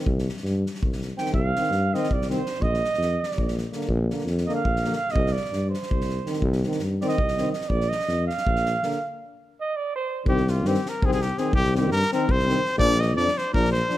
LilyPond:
<<
  \new Staff \with { instrumentName = "Flugelhorn" } { \time 7/8 \key c \minor \tempo 4 = 165 r2. g''8 | f''4. ees''8 d''8 c''4 | ees''4. d''4 r4 | r4. ees''16 f''4~ f''16 f''8 |
ees''8 d''4 c''2~ | c''8 r4 d''16 ees''4~ ees''16 ees''8 | d''8 ees''4 f''2~ | f''8 r4 ees''8 d''8 c''4 |
r2. r8 | r2. r8 | r2. r8 | }
  \new Staff \with { instrumentName = "Trumpet" } { \time 7/8 \key c \minor r2. r8 | r2. r8 | r2. r8 | r2. r8 |
r2. r8 | r2. r8 | r2. r8 | r2. r8 |
g'8 f'8 g'8 bes'8 aes'16 aes'16 g'8 aes'8 | g'8 g'8 bes'8 bes'8 c''4. | d''8 ees''8 d''8 c''8 bes'8 c''4 | }
  \new Staff \with { instrumentName = "French horn" } { \time 7/8 \key c \minor r2. c'8~ | c'8 c'4 c'4 c'4 | r2. bes8~ | bes8 bes4 bes4 bes4 |
r2. c'8~ | c'8 c'4 c'4 c'4 | r2. bes8~ | bes8 r2. |
c'4 c'4 c'4 c'8~ | c'8 c'4 c'4 c'4 | d'4 d'4 d'4 d'8 | }
  \new Staff \with { instrumentName = "Euphonium" } { \clef bass \time 7/8 \key c \minor r2. ees8~ | ees8 ees4 ees4 ees4 | r2. d8~ | d8 d4 d4 d4 |
r2. ees8~ | ees8 ees4 ees4 ees4 | r2. d8~ | d8 r2. |
ees4 ees4 ees4 ees8~ | ees8 ees4 ees4 ees4 | f4 f4 f4 f8 | }
  \new Staff \with { instrumentName = "Tuba" } { \clef bass \time 7/8 \key c \minor c,4 g,4 c,4. | c,4 g,4 c,4. | bes,,4 f,4 bes,,4. | bes,,4 f,4 bes,,4. |
c,4 g,4 c,4. | c,4 g,4 c,4. | bes,,4 f,4 bes,,4. | r2. r8 |
c,4 g,8 r8 c,4. | c,4 g,8 r8 c,4. | bes,,4 f,8 r8 bes,,4. | }
  \new DrumStaff \with { instrumentName = "Drums" } \drummode { \time 7/8 bd16 sn16 sn16 sn16 sn8 sn16 sn16 bd16 sn16 sn8 sn16 sn16 | bd8 sn16 sn16 sn8 sn16 sn16 bd16 sn16 sn8 sn16 sn16 | bd16 sn16 sn16 sn16 sn8 sn16 sn16 bd16 sn16 sn8 sn16 sn16 | bd8 sn16 sn16 sn16 sn16 sn8 bd16 sn16 sn16 sn8 sn16 |
bd16 sn16 sn16 sn16 sn8 sn16 sn16 bd16 sn16 sn8 sn16 sn16 | bd16 sn16 sn16 sn16 sn8 sn16 sn16 bd16 sn16 sn8 sn16 sn16 | bd16 sn16 sn16 sn16 sn8 sn16 sn16 bd16 sn16 sn8 sn16 sn16 | r4 r4 r4. |
bd16 sn16 sn8 sn16 sn16 sn8 bd16 sn16 sn8 sn8 | bd16 sn16 sn8 sn16 sn16 sn8 bd16 sn16 sn8 sn8 | bd16 sn16 sn8 sn16 sn16 sn8 bd16 sn16 sn8 sn8 | }
>>